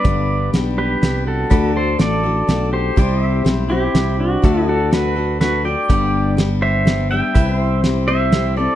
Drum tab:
HH |x-x-x-|x-x-x-|x-x-x-|x-x-x-|
SD |--o-o-|--o-o-|--o-o-|--o-o-|
BD |o-----|o-----|o-----|o-----|

HH |x-x-x-|x-x-x-|
SD |--o-o-|--o-o-|
BD |o-----|o-----|